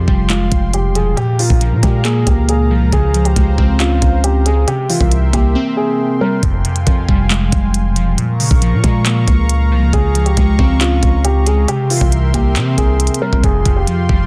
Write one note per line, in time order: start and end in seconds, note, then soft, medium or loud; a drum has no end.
0.00 0.52 F2 loud
0.00 0.74 C3 medium
0.00 0.94 F3 medium
0.00 1.16 F4 medium
0.00 0.26 G4 medium
0.00 4.64 F5 medium
0.00 1.16 G5 medium
0.00 1.16 C6 medium
0.08 0.50 F1 loud
0.08 1.17 G3 medium
0.08 kick medium
0.29 1.17 G#3 medium
0.29 0.71 F4 medium
0.29 clap loud
0.29 closed hi-hat medium
0.52 0.86 F1 loud
0.52 kick medium
0.52 closed hi-hat medium
0.74 0.94 G4 medium
0.74 closed hi-hat medium
0.84 1.16 E1 loud
0.95 1.17 F3 medium
0.95 1.16 G#4 medium
0.95 closed hi-hat medium
1.17 2.26 A#2 loud
1.17 1.38 G4 loud
1.17 2.91 A#4 medium
1.17 4.64 A#5 medium
1.17 closed hi-hat medium
1.39 2.49 C#3 medium
1.39 1.60 F4 medium
1.39 open hi-hat medium
1.50 1.74 A#1 loud
1.50 kick loud
1.61 2.70 F3 medium
1.61 closed hi-hat medium
1.72 1.82 A#2 loud
1.83 2.25 A#2 loud
1.83 2.93 G#3 medium
1.83 2.04 G4 medium
1.83 kick medium
1.83 closed hi-hat medium
2.05 2.92 A#3 loud
2.05 2.25 G#4 medium
2.05 clap loud
2.05 closed hi-hat medium
2.27 2.72 C#2 loud
2.27 2.47 G4 medium
2.27 kick medium
2.27 closed hi-hat medium
2.49 2.70 G#4 medium
2.49 closed hi-hat medium
2.71 2.83 C2 loud
2.71 2.93 F3 medium
2.82 2.92 C#2 loud
2.92 3.35 C#2 loud
2.92 4.02 C#3 medium
2.92 3.24 G#4 loud
2.92 4.66 C5 medium
2.92 kick loud
2.92 closed hi-hat medium
3.14 4.24 F3 medium
3.14 closed hi-hat medium
3.25 3.77 G4 medium
3.25 closed hi-hat medium
3.36 3.57 C#2 loud
3.36 4.44 G#3 medium
3.36 kick medium
3.36 closed hi-hat medium
3.58 4.00 C#2 loud
3.58 4.68 C4 medium
3.58 kick medium
3.80 4.68 C#4 loud
3.80 4.21 F4 medium
3.80 clap loud
3.80 closed hi-hat medium
4.02 4.65 C#2 loud
4.02 kick medium
4.02 closed hi-hat medium
4.24 4.45 G4 medium
4.24 closed hi-hat medium
4.45 4.68 G#3 medium
4.45 4.67 G#4 medium
4.45 closed hi-hat medium
4.67 5.77 C3 loud
4.67 4.88 G4 loud
4.67 6.41 A#4 medium
4.67 6.41 E5 medium
4.67 8.15 G5 medium
4.67 8.15 C6 medium
4.67 closed hi-hat medium
4.90 5.99 E3 medium
4.90 5.10 F4 medium
4.90 open hi-hat medium
5.01 5.32 C2 loud
5.01 kick loud
5.12 closed hi-hat medium
5.33 5.55 C2 loud
5.33 6.43 A#3 medium
5.33 5.54 G4 medium
5.33 kick medium
5.33 closed hi-hat medium
5.55 6.43 C4 loud
5.77 6.18 G#4 medium
6.21 6.43 G3 medium
6.21 6.42 A#4 medium
6.43 6.64 F1 loud
6.43 7.52 F2 loud
6.43 8.16 F5 medium
6.43 8.16 G#5 medium
6.43 kick loud
6.43 closed hi-hat medium
6.65 7.74 C3 medium
6.65 closed hi-hat medium
6.76 closed hi-hat medium
6.87 7.08 F2 loud
6.87 7.95 F3 medium
6.87 kick medium
6.87 closed hi-hat medium
7.08 7.51 F1 loud
7.08 8.18 G3 medium
7.08 kick medium
7.30 8.18 G#3 loud
7.30 clap loud
7.30 closed hi-hat medium
7.52 7.87 F1 loud
7.52 kick medium
7.52 closed hi-hat medium
7.74 closed hi-hat medium
7.85 8.16 E1 loud
7.96 8.18 F3 medium
7.96 closed hi-hat medium
8.17 9.27 A#2 loud
8.17 9.91 A#4 medium
8.17 11.65 F5 medium
8.17 11.65 A#5 medium
8.17 9.91 C#6 medium
8.17 closed hi-hat medium
8.40 9.49 C#3 medium
8.40 open hi-hat medium
8.51 8.74 A#1 loud
8.51 kick loud
8.62 9.70 F3 medium
8.62 closed hi-hat medium
8.73 8.83 A#2 loud
8.84 9.26 A#2 loud
8.84 9.93 G#3 medium
8.84 kick medium
8.84 closed hi-hat medium
9.05 9.93 A#3 loud
9.05 clap loud
9.05 closed hi-hat medium
9.28 9.73 C#2 loud
9.28 kick medium
9.28 closed hi-hat medium
9.49 closed hi-hat medium
9.71 9.84 C2 loud
9.71 9.93 F3 medium
9.82 9.93 C#2 loud
9.93 10.35 C#2 loud
9.93 11.03 C#3 medium
9.93 10.24 G#4 loud
9.93 11.67 C#6 medium
9.93 kick loud
9.93 closed hi-hat medium
10.15 11.25 F3 medium
10.15 closed hi-hat medium
10.26 10.77 G4 medium
10.26 closed hi-hat medium
10.37 10.58 C#2 loud
10.37 11.45 G#3 medium
10.37 kick medium
10.37 closed hi-hat medium
10.59 11.01 C#2 loud
10.59 11.69 C4 medium
10.59 kick medium
10.80 11.68 C#4 loud
10.80 11.22 F4 medium
10.80 clap loud
10.80 closed hi-hat medium
11.03 11.66 C#2 loud
11.03 kick medium
11.03 closed hi-hat medium
11.25 11.45 G4 medium
11.25 closed hi-hat medium
11.46 11.68 G#3 medium
11.46 11.67 G#4 medium
11.46 closed hi-hat medium
11.68 12.78 C3 loud
11.68 11.89 G4 loud
11.68 13.42 A#4 medium
11.68 13.42 E5 medium
11.68 13.42 G5 medium
11.68 13.42 C6 medium
11.68 closed hi-hat medium
11.90 13.00 E3 medium
11.90 12.11 F4 medium
11.90 open hi-hat medium
12.01 12.33 C2 loud
12.01 kick loud
12.12 closed hi-hat medium
12.34 12.58 C2 loud
12.34 13.44 A#3 medium
12.34 12.55 G4 medium
12.34 kick medium
12.34 closed hi-hat medium
12.56 12.77 C3 loud
12.56 13.44 C4 loud
12.56 clap loud
12.56 closed hi-hat medium
12.78 13.09 C2 loud
12.78 13.19 G#4 medium
12.78 kick medium
12.78 closed hi-hat medium
13.00 closed hi-hat medium
13.07 closed hi-hat medium
13.14 closed hi-hat medium
13.22 13.44 G3 medium
13.22 13.42 A#4 medium
13.33 13.43 C2 loud
13.33 kick medium
13.44 13.65 F1 loud
13.44 14.27 F2 loud
13.44 14.27 F4 medium
13.44 13.75 G#4 medium
13.44 14.27 F5 medium
13.44 14.27 G5 medium
13.44 14.27 C6 medium
13.44 kick loud
13.44 closed hi-hat medium
13.66 13.87 F1 loud
13.66 14.27 C3 medium
13.66 kick loud
13.66 closed hi-hat medium
13.76 14.27 G4 medium
13.87 14.27 F3 medium
13.87 closed hi-hat medium
14.09 14.27 F1 loud
14.09 14.27 G3 medium
14.09 kick medium